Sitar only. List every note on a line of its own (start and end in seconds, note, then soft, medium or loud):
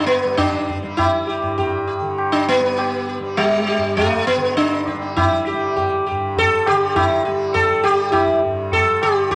0.00 0.06 D4 medium
0.07 0.37 B3 medium
0.37 1.00 D4 medium
0.97 1.84 E4 medium
1.27 1.55 G4 soft
1.58 1.86 G4 soft
1.87 2.16 G4 soft
2.32 2.48 D4 medium
2.49 3.19 B3 medium
2.78 3.06 G4 soft
3.09 3.36 G4 soft
3.37 3.99 G3 medium
3.68 3.96 G4 soft
3.97 4.25 A3 medium
4.27 4.56 B3 medium
4.57 5.19 D4 medium
4.87 5.15 G4 soft
5.16 6.02 E4 medium
5.47 5.74 G4 soft
5.76 6.04 G4 soft
6.06 6.34 G4 soft
6.38 6.68 A4 loud
6.67 6.95 G4 medium
6.96 7.23 E4 medium
7.25 7.52 G4 soft
7.54 7.85 A4 loud
7.84 8.12 G4 medium
8.12 8.40 E4 medium
8.73 9.03 A4 medium
9.03 9.30 G4 medium
9.31 9.35 E4 medium
9.31 9.35 G4 soft